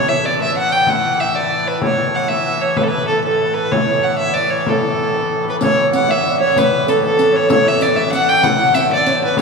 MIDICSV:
0, 0, Header, 1, 6, 480
1, 0, Start_track
1, 0, Key_signature, 3, "major"
1, 0, Tempo, 315623
1, 1314, Time_signature, 6, 3, 24, 8
1, 14323, End_track
2, 0, Start_track
2, 0, Title_t, "Fiddle"
2, 0, Program_c, 0, 110
2, 123, Note_on_c, 0, 76, 86
2, 386, Note_on_c, 0, 74, 90
2, 409, Note_off_c, 0, 76, 0
2, 608, Note_off_c, 0, 74, 0
2, 634, Note_on_c, 0, 76, 82
2, 838, Note_off_c, 0, 76, 0
2, 871, Note_on_c, 0, 78, 103
2, 1093, Note_on_c, 0, 79, 94
2, 1116, Note_off_c, 0, 78, 0
2, 1357, Note_on_c, 0, 78, 99
2, 1379, Note_off_c, 0, 79, 0
2, 1823, Note_on_c, 0, 76, 86
2, 1846, Note_off_c, 0, 78, 0
2, 2058, Note_on_c, 0, 74, 89
2, 2081, Note_off_c, 0, 76, 0
2, 2545, Note_on_c, 0, 71, 85
2, 2568, Note_off_c, 0, 74, 0
2, 2774, Note_off_c, 0, 71, 0
2, 2785, Note_on_c, 0, 73, 93
2, 3270, Note_on_c, 0, 78, 85
2, 3293, Note_off_c, 0, 73, 0
2, 3474, Note_on_c, 0, 76, 89
2, 3496, Note_off_c, 0, 78, 0
2, 3972, Note_on_c, 0, 73, 84
2, 3995, Note_off_c, 0, 76, 0
2, 4204, Note_on_c, 0, 71, 81
2, 4227, Note_off_c, 0, 73, 0
2, 4306, Note_on_c, 0, 69, 68
2, 4329, Note_off_c, 0, 71, 0
2, 4382, Note_on_c, 0, 71, 96
2, 4404, Note_off_c, 0, 69, 0
2, 4666, Note_off_c, 0, 71, 0
2, 4675, Note_on_c, 0, 69, 73
2, 4906, Note_off_c, 0, 69, 0
2, 4928, Note_on_c, 0, 69, 78
2, 5381, Note_on_c, 0, 71, 87
2, 5404, Note_off_c, 0, 69, 0
2, 5650, Note_on_c, 0, 73, 87
2, 5673, Note_off_c, 0, 71, 0
2, 6124, Note_on_c, 0, 78, 77
2, 6147, Note_off_c, 0, 73, 0
2, 6353, Note_off_c, 0, 78, 0
2, 6362, Note_on_c, 0, 76, 89
2, 6594, Note_on_c, 0, 74, 85
2, 6617, Note_off_c, 0, 76, 0
2, 6846, Note_on_c, 0, 73, 83
2, 6869, Note_off_c, 0, 74, 0
2, 7121, Note_on_c, 0, 69, 82
2, 7144, Note_off_c, 0, 73, 0
2, 8306, Note_off_c, 0, 69, 0
2, 8354, Note_on_c, 0, 71, 74
2, 8448, Note_off_c, 0, 71, 0
2, 8539, Note_on_c, 0, 73, 92
2, 8981, Note_off_c, 0, 73, 0
2, 9043, Note_on_c, 0, 78, 90
2, 9284, Note_on_c, 0, 76, 91
2, 9306, Note_off_c, 0, 78, 0
2, 9725, Note_off_c, 0, 76, 0
2, 9734, Note_on_c, 0, 73, 92
2, 10003, Note_on_c, 0, 71, 94
2, 10026, Note_off_c, 0, 73, 0
2, 10470, Note_on_c, 0, 69, 83
2, 10493, Note_off_c, 0, 71, 0
2, 10697, Note_off_c, 0, 69, 0
2, 10716, Note_on_c, 0, 69, 87
2, 11190, Note_on_c, 0, 73, 98
2, 11212, Note_off_c, 0, 69, 0
2, 11404, Note_off_c, 0, 73, 0
2, 11413, Note_on_c, 0, 73, 102
2, 11677, Note_on_c, 0, 76, 93
2, 11700, Note_off_c, 0, 73, 0
2, 11893, Note_on_c, 0, 74, 86
2, 11916, Note_off_c, 0, 76, 0
2, 12108, Note_on_c, 0, 76, 99
2, 12131, Note_off_c, 0, 74, 0
2, 12341, Note_off_c, 0, 76, 0
2, 12350, Note_on_c, 0, 78, 105
2, 12599, Note_on_c, 0, 79, 110
2, 12622, Note_off_c, 0, 78, 0
2, 12823, Note_on_c, 0, 78, 107
2, 12846, Note_off_c, 0, 79, 0
2, 13302, Note_on_c, 0, 76, 92
2, 13325, Note_off_c, 0, 78, 0
2, 13543, Note_off_c, 0, 76, 0
2, 13578, Note_on_c, 0, 74, 92
2, 14006, Note_off_c, 0, 74, 0
2, 14062, Note_on_c, 0, 71, 91
2, 14265, Note_off_c, 0, 71, 0
2, 14323, End_track
3, 0, Start_track
3, 0, Title_t, "Harp"
3, 0, Program_c, 1, 46
3, 8289, Note_on_c, 1, 71, 60
3, 8527, Note_on_c, 1, 73, 77
3, 9005, Note_on_c, 1, 78, 77
3, 9179, Note_off_c, 1, 78, 0
3, 9185, Note_on_c, 1, 78, 64
3, 9251, Note_on_c, 1, 76, 79
3, 9483, Note_on_c, 1, 74, 78
3, 9574, Note_off_c, 1, 73, 0
3, 9737, Note_on_c, 1, 73, 80
3, 9828, Note_off_c, 1, 74, 0
3, 9967, Note_off_c, 1, 71, 0
3, 9973, Note_on_c, 1, 71, 78
3, 10444, Note_on_c, 1, 69, 71
3, 10684, Note_off_c, 1, 69, 0
3, 10690, Note_on_c, 1, 69, 78
3, 10892, Note_off_c, 1, 71, 0
3, 10898, Note_on_c, 1, 71, 77
3, 11131, Note_off_c, 1, 73, 0
3, 11137, Note_on_c, 1, 73, 81
3, 11395, Note_off_c, 1, 73, 0
3, 11401, Note_on_c, 1, 73, 86
3, 11630, Note_off_c, 1, 78, 0
3, 11872, Note_off_c, 1, 76, 0
3, 12098, Note_on_c, 1, 76, 89
3, 12334, Note_on_c, 1, 78, 91
3, 12591, Note_on_c, 1, 79, 82
3, 12682, Note_off_c, 1, 78, 0
3, 12815, Note_on_c, 1, 78, 90
3, 12907, Note_off_c, 1, 79, 0
3, 13303, Note_off_c, 1, 76, 0
3, 13309, Note_on_c, 1, 76, 75
3, 13537, Note_on_c, 1, 74, 89
3, 13628, Note_off_c, 1, 73, 0
3, 13784, Note_on_c, 1, 73, 82
3, 13875, Note_off_c, 1, 74, 0
3, 14014, Note_off_c, 1, 71, 0
3, 14020, Note_on_c, 1, 71, 71
3, 14030, Note_off_c, 1, 69, 0
3, 14251, Note_off_c, 1, 73, 0
3, 14257, Note_on_c, 1, 73, 70
3, 14323, Note_off_c, 1, 71, 0
3, 14323, Note_off_c, 1, 73, 0
3, 14323, Note_off_c, 1, 76, 0
3, 14323, Note_off_c, 1, 78, 0
3, 14323, End_track
4, 0, Start_track
4, 0, Title_t, "Pipe organ"
4, 0, Program_c, 2, 19
4, 0, Note_on_c, 2, 45, 54
4, 0, Note_on_c, 2, 52, 60
4, 2695, Note_off_c, 2, 52, 0
4, 2702, Note_off_c, 2, 45, 0
4, 2725, Note_on_c, 2, 52, 60
4, 2732, Note_on_c, 2, 45, 60
4, 8466, Note_off_c, 2, 45, 0
4, 8473, Note_off_c, 2, 52, 0
4, 8496, Note_on_c, 2, 45, 63
4, 8504, Note_on_c, 2, 52, 58
4, 14246, Note_off_c, 2, 45, 0
4, 14247, Note_off_c, 2, 52, 0
4, 14276, Note_on_c, 2, 45, 60
4, 14323, Note_off_c, 2, 45, 0
4, 14323, End_track
5, 0, Start_track
5, 0, Title_t, "Frame drum"
5, 590, Note_on_c, 9, 64, 64
5, 742, Note_off_c, 9, 64, 0
5, 832, Note_on_c, 9, 64, 25
5, 984, Note_off_c, 9, 64, 0
5, 1317, Note_on_c, 9, 64, 66
5, 1469, Note_off_c, 9, 64, 0
5, 1806, Note_on_c, 9, 64, 23
5, 1958, Note_off_c, 9, 64, 0
5, 2047, Note_on_c, 9, 64, 52
5, 2199, Note_off_c, 9, 64, 0
5, 2759, Note_on_c, 9, 64, 79
5, 2911, Note_off_c, 9, 64, 0
5, 3486, Note_on_c, 9, 64, 62
5, 3638, Note_off_c, 9, 64, 0
5, 3729, Note_on_c, 9, 64, 26
5, 3881, Note_off_c, 9, 64, 0
5, 4206, Note_on_c, 9, 64, 73
5, 4358, Note_off_c, 9, 64, 0
5, 4949, Note_on_c, 9, 64, 56
5, 5101, Note_off_c, 9, 64, 0
5, 5191, Note_on_c, 9, 64, 29
5, 5343, Note_off_c, 9, 64, 0
5, 5658, Note_on_c, 9, 64, 89
5, 5810, Note_off_c, 9, 64, 0
5, 6380, Note_on_c, 9, 64, 56
5, 6532, Note_off_c, 9, 64, 0
5, 6617, Note_on_c, 9, 64, 30
5, 6770, Note_off_c, 9, 64, 0
5, 7095, Note_on_c, 9, 64, 80
5, 7247, Note_off_c, 9, 64, 0
5, 7583, Note_on_c, 9, 64, 28
5, 7735, Note_off_c, 9, 64, 0
5, 7825, Note_on_c, 9, 64, 66
5, 7977, Note_off_c, 9, 64, 0
5, 8552, Note_on_c, 9, 64, 84
5, 8704, Note_off_c, 9, 64, 0
5, 9258, Note_on_c, 9, 64, 60
5, 9410, Note_off_c, 9, 64, 0
5, 9496, Note_on_c, 9, 64, 26
5, 9648, Note_off_c, 9, 64, 0
5, 9980, Note_on_c, 9, 64, 74
5, 10132, Note_off_c, 9, 64, 0
5, 10692, Note_on_c, 9, 64, 57
5, 10845, Note_off_c, 9, 64, 0
5, 10936, Note_on_c, 9, 64, 25
5, 11088, Note_off_c, 9, 64, 0
5, 11404, Note_on_c, 9, 64, 79
5, 11556, Note_off_c, 9, 64, 0
5, 12112, Note_on_c, 9, 64, 70
5, 12264, Note_off_c, 9, 64, 0
5, 12355, Note_on_c, 9, 64, 30
5, 12507, Note_off_c, 9, 64, 0
5, 12823, Note_on_c, 9, 64, 87
5, 12975, Note_off_c, 9, 64, 0
5, 13066, Note_on_c, 9, 64, 31
5, 13218, Note_off_c, 9, 64, 0
5, 13304, Note_on_c, 9, 64, 29
5, 13456, Note_off_c, 9, 64, 0
5, 13537, Note_on_c, 9, 64, 67
5, 13689, Note_off_c, 9, 64, 0
5, 13784, Note_on_c, 9, 64, 28
5, 13936, Note_off_c, 9, 64, 0
5, 14247, Note_on_c, 9, 64, 80
5, 14323, Note_off_c, 9, 64, 0
5, 14323, End_track
6, 0, Start_track
6, 0, Title_t, "Riq"
6, 8528, Note_on_c, 9, 54, 59
6, 8680, Note_off_c, 9, 54, 0
6, 9025, Note_on_c, 9, 54, 55
6, 9177, Note_off_c, 9, 54, 0
6, 9280, Note_on_c, 9, 54, 17
6, 9432, Note_off_c, 9, 54, 0
6, 10000, Note_on_c, 9, 54, 55
6, 10153, Note_off_c, 9, 54, 0
6, 10465, Note_on_c, 9, 54, 54
6, 10617, Note_off_c, 9, 54, 0
6, 10712, Note_on_c, 9, 54, 17
6, 10864, Note_off_c, 9, 54, 0
6, 10933, Note_on_c, 9, 54, 59
6, 11085, Note_off_c, 9, 54, 0
6, 11405, Note_on_c, 9, 54, 70
6, 11557, Note_off_c, 9, 54, 0
6, 11877, Note_on_c, 9, 54, 59
6, 12029, Note_off_c, 9, 54, 0
6, 12114, Note_on_c, 9, 54, 21
6, 12266, Note_off_c, 9, 54, 0
6, 12360, Note_on_c, 9, 54, 63
6, 12512, Note_off_c, 9, 54, 0
6, 12829, Note_on_c, 9, 54, 71
6, 12981, Note_off_c, 9, 54, 0
6, 13073, Note_on_c, 9, 54, 21
6, 13225, Note_off_c, 9, 54, 0
6, 13301, Note_on_c, 9, 54, 59
6, 13453, Note_off_c, 9, 54, 0
6, 13786, Note_on_c, 9, 54, 59
6, 13938, Note_off_c, 9, 54, 0
6, 14276, Note_on_c, 9, 54, 55
6, 14323, Note_off_c, 9, 54, 0
6, 14323, End_track
0, 0, End_of_file